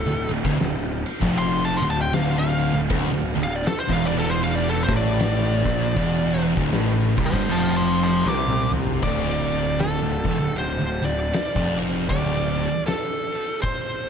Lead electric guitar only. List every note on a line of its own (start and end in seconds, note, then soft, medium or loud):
0.00 0.30 A4 loud
1.38 1.62 C6 loud
1.65 1.83 A5 medium
1.77 1.85 C6 medium
1.90 2.01 A5 medium
2.02 2.12 G5 loud
2.14 2.38 F5 medium
2.39 2.79 F5 loud
3.43 3.56 F5 medium
3.56 3.66 D5 loud
3.67 3.80 A4 medium
3.80 3.91 C5 medium
3.93 4.06 F5 medium
4.07 4.15 D5 loud
4.19 4.31 A4 loud
4.31 4.42 C5 medium
4.44 4.55 F5 loud
4.55 4.67 D5 medium
4.70 4.84 A4 medium
4.84 4.92 C5 medium
4.96 6.44 D5 loud
7.26 7.49 C5 medium
7.26 7.50 A5 medium
7.50 7.74 C5 medium
7.50 7.75 A5 medium
7.76 7.99 A5 medium
7.76 8.01 C6 loud
8.03 8.26 A5 medium
8.03 8.27 C6 medium
8.28 8.71 D6 loud
9.03 9.82 D5 loud
9.80 10.58 A4 medium
10.58 11.04 C5 medium
11.05 11.76 D5 medium
12.09 12.82 D5 loud
12.86 13.59 A4 medium
13.62 14.09 C5 medium